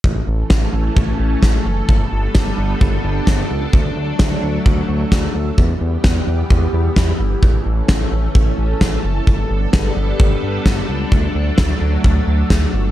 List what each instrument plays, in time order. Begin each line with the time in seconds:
0.04 analog synth bass A1, string machine E3 A3 C#4 A4, kick
0.27 analog synth bass A1
0.50 analog synth bass A1, kick, snare
0.73 analog synth bass A1
0.96 analog synth bass A1, kick
1.19 analog synth bass A1
1.43 analog synth bass A1, kick, snare
1.65 analog synth bass F#1
1.89 analog synth bass G1, string machine G3 B3 D4, kick
2.12 analog synth bass G1
2.35 analog synth bass G1, kick, snare
2.58 analog synth bass G1
2.81 analog synth bass G1, kick
3.04 analog synth bass G1
3.27 analog synth bass G1, kick, snare
3.50 analog synth bass C#2
3.73 analog synth bass D2, string machine F#3 A3, kick
3.96 analog synth bass D2
4.19 analog synth bass D2, kick, snare
4.43 analog synth bass D2
4.66 analog synth bass D2, kick
4.89 analog synth bass D2
5.12 analog synth bass D2, kick, snare
5.35 analog synth bass D2
5.58 analog synth bass E2, string machine E3 G3 B3 G4, kick
5.81 analog synth bass E2
6.04 analog synth bass E2, kick, snare
6.27 analog synth bass E2
6.50 analog synth bass E2, kick
6.73 analog synth bass E2
6.96 analog synth bass E2, kick, snare
7.19 analog synth bass G1
7.43 analog synth bass A1, string machine A3 C#4 A4, kick
7.66 analog synth bass A1
7.88 analog synth bass A1, kick, snare
8.12 analog synth bass A1
8.35 analog synth bass A1, kick
8.58 analog synth bass A1
8.81 analog synth bass A1, kick, snare
9.04 analog synth bass F#1
9.27 analog synth bass G1, string machine G3 B3 D4, kick
9.50 analog synth bass G1
9.73 analog synth bass G1, kick, snare
9.97 analog synth bass G1
10.20 analog synth bass G1, kick
10.43 analog synth bass G1
10.66 analog synth bass G1, kick, snare
10.89 analog synth bass C#2
11.12 analog synth bass D2, string machine F#3 A3, kick
11.35 analog synth bass D2
11.58 analog synth bass D2, kick, snare
11.81 analog synth bass D2
12.04 analog synth bass D2, kick
12.27 analog synth bass D2
12.50 analog synth bass D2, kick, snare
12.74 analog synth bass G1